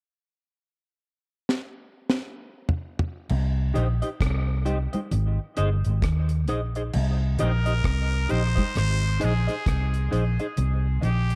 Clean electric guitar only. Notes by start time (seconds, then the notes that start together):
3.74 D#4 G4 C5 D#5
4.02 D#4 G4 C5 D#5
4.65 D#4 G4 C5 D#5
4.93 D#4 G4 C5 D#5
5.57 D#4 G#4 C5 D#5
6.48 D#4 G#4 C5 D#5
6.76 D#4 G#4 C5 D#5
7.39 D#4 G4 C5 D#5
7.66 D#4 G4 C5 D#5
8.29 D#4 G4 C5 D#5
8.55 D#4 G4 C5 D#5
9.20 D#4 G#4 C5 D#5
9.47 D#4 G#4 C5 D#5
10.11 D#4 G#4 C5 D#5
10.40 D#4 G#4 C5 D#5